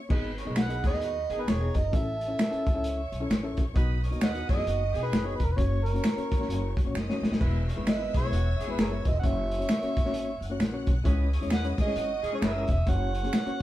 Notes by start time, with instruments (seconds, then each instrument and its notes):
0.09 upright bass G#1, horn section G#3 D#4 B4, reed electric piano B3 D#4 G#4 D#5, string section B4 B5, kick, crash
0.38 horn section C#4 A#4 C#5, closed hi-hat
0.45 upright bass B1, reed electric piano B3 D#4 G#4 D#5
0.56 horn section G#3 D#4 B4, harmonica F#5, finger snap, snare, closed hi-hat
0.68 reed electric piano B3 D#4 G#4 D#5, closed hi-hat
0.83 upright bass D#2, horn section D#3 B3 G#4, harmonica D#5, kick, snare, closed hi-hat
0.90 reed electric piano B3 D#4 G#4 D#5, snare
1.02 horn section F#3 D#4 F#4, closed hi-hat
1.29 upright bass G#1, horn section D#3 B3 G#4, string section A#4 A#5, closed hi-hat
1.37 reed electric piano B3 D#4 G#4 A#4, harmonica B4
1.47 upright bass E1, harmonica C#5, finger snap, snare, closed hi-hat
1.59 reed electric piano B3 D#4 G#4 D#5
1.74 upright bass F#1, harmonica D#5, kick, closed hi-hat
1.92 upright bass A1, reed electric piano C#4 E4 A4 E5, string section A4 A5, harmonica E5, kick, closed hi-hat
2.21 closed hi-hat
2.28 reed electric piano C#4 E4 A4 E5
2.39 finger snap, snare, closed hi-hat
2.51 reed electric piano C#4 E4 A4 E5, muted upright bass stroke, closed hi-hat
2.66 upright bass C#2, kick, closed hi-hat
2.74 reed electric piano C#4 E4 A4 E5
2.84 string section C#5 C#6, closed hi-hat
3.12 upright bass B1, closed hi-hat
3.21 reed electric piano C#4 E4 A4 E5
3.30 upright bass A1, finger snap, snare, closed hi-hat
3.43 reed electric piano C#4 E4 A4 E5
3.57 upright bass A1, kick, closed hi-hat
3.74 upright bass B1, horn section F#3 D#4 B4, reed electric piano B3 D#4 F#4 D#5, string section D#5 D#6, kick, closed hi-hat
4.03 horn section C#4 A#4 C#5, closed hi-hat
4.11 upright bass D#2, reed electric piano B3 D#4 F#4 D#5, closed hi-hat
4.21 horn section F#3 D#4 B4, harmonica C#5 D#5 F#5, finger snap, snare, closed hi-hat
4.34 reed electric piano B3 D#4 F#4 D#5, closed hi-hat
4.49 upright bass F#2, horn section G#3 E4 G#4, harmonica D#5, kick, snare, closed hi-hat
4.56 reed electric piano B3 D#4 F#4 D#5, snare
4.67 upright bass F#1, horn section D#3 B3 F#4, closed hi-hat
4.93 upright bass B2, horn section D#3 B3 G#4, closed hi-hat
5.02 reed electric piano B3 D#4 F#4 D#5, harmonica B4
5.11 upright bass F#1, string section B4 B5, finger snap, snare, closed hi-hat
5.24 reed electric piano B3 D#4 F#4 D#5, harmonica C#5
5.36 harmonica B4
5.40 upright bass E1, kick, closed hi-hat
5.45 harmonica A#4
5.51 harmonica B4
5.56 upright bass F#1, reed electric piano A#3 C#4 F#4 C#5, harmonica C#5, string section C#5 C#6, kick, closed hi-hat
5.85 harmonica A#4, closed hi-hat
5.93 reed electric piano A#3 C#4 F#4 C#5, closed hi-hat
6.04 finger snap, snare, closed hi-hat
6.16 reed electric piano A#3 C#4 F#4 C#5, muted upright bass stroke, closed hi-hat
6.32 upright bass G#1, kick, closed hi-hat
6.39 reed electric piano A#3 C#4 F#4 C#5, snare
6.48 upright bass F#1, closed hi-hat
6.77 kick, closed hi-hat
6.85 upright bass A#1, reed electric piano A#3 C#4 F#4 C#5
6.94 upright bass F#1, string section D#5 D#6, finger snap, snare
7.08 reed electric piano A#3 C#4 F#4 C#5, snare
7.22 upright bass A#1, snare
7.31 upright bass A#1, snare
7.39 upright bass E1, reed electric piano G#3 B3 E4 B4, horn section G#3 E4 B4, string section E5 E6, kick, crash
7.68 horn section C#4 A#4 C#5, closed hi-hat
7.76 upright bass G#1, reed electric piano G#3 B3 E4 B4
7.86 horn section G#3 E4 B4, harmonica D#5, finger snap, snare, closed hi-hat
7.98 reed electric piano G#3 B3 E4 B4
8.14 upright bass B1, horn section E3 B3 G#4, harmonica C#5, kick, closed hi-hat
8.22 reed electric piano G#3 B3 E4 B4, snare
8.32 upright bass E1, horn section F#3 D#4 F#4, closed hi-hat
8.59 upright bass G#1, horn section E3 B3 G#4, closed hi-hat
8.67 reed electric piano G#3 B3 E4 B4
8.71 harmonica B4
8.78 upright bass F#1, harmonica G#4 A#4 C#5, finger snap, snare, closed hi-hat
8.90 reed electric piano G#3 B3 E4 B4
9.05 upright bass E1, harmonica D#5, kick, closed hi-hat
9.20 upright bass F#1, reed electric piano A#3 C#4 F#4 C#5, string section C#5 C#6, harmonica F#5, kick
9.24 harmonica E5, closed hi-hat
9.51 closed hi-hat
9.58 reed electric piano A#3 C#4 F#4 C#5, closed hi-hat
9.69 finger snap, snare, closed hi-hat
9.82 reed electric piano A#3 C#4 F#4 C#5, muted upright bass stroke, closed hi-hat
9.96 upright bass G#1, kick, closed hi-hat
10.05 reed electric piano A#3 C#4 F#4 C#5, snare
10.14 closed hi-hat
10.41 upright bass F#1, string section F#5 F#6, closed hi-hat
10.50 reed electric piano A#3 C#4 F#4 C#5
10.59 upright bass A#1, finger snap, snare, closed hi-hat
10.72 reed electric piano A#3 C#4 F#4 C#5
10.87 upright bass B1, kick, closed hi-hat
11.04 upright bass C#2, reed electric piano G#3 C#4 E4 C#5, horn section B3 G#4 B4, string section D#5 D#6, kick, closed hi-hat
11.32 horn section G#3 E4 C#5, closed hi-hat
11.41 upright bass E2, reed electric piano G#3 C#4 E4 C#5, closed hi-hat
11.50 horn section B3 G#4 B4, harmonica F#5, finger snap, snare, closed hi-hat
11.63 reed electric piano G#3 C#4 E4 C#5, closed hi-hat
11.78 upright bass G#2, horn section E3 C#4 G#4, harmonica D#5, kick, snare, closed hi-hat
11.86 reed electric piano G#3 C#4 E4 C#5, snare
11.96 upright bass G#1, horn section F#3 D#4 F#4, closed hi-hat
12.23 upright bass C#3, horn section E3 C#4 G#4, closed hi-hat
12.32 reed electric piano G#3 C#4 E4 C#5, harmonica C#5
12.42 upright bass F#1, harmonica B4 C#5 E5, finger snap, snare, closed hi-hat
12.54 reed electric piano G#3 C#4 E4 C#5
12.68 upright bass E1, harmonica E5, kick, closed hi-hat
12.86 upright bass F#1, reed electric piano A#3 C#4 F#4 C#5, string section C#5 C#6, harmonica F#5, kick, closed hi-hat
13.15 closed hi-hat
13.23 reed electric piano A#3 C#4 F#4 G#4, closed hi-hat
13.33 finger snap, snare, closed hi-hat
13.46 reed electric piano A#3 C#4 F#4 C#5, muted upright bass stroke, closed hi-hat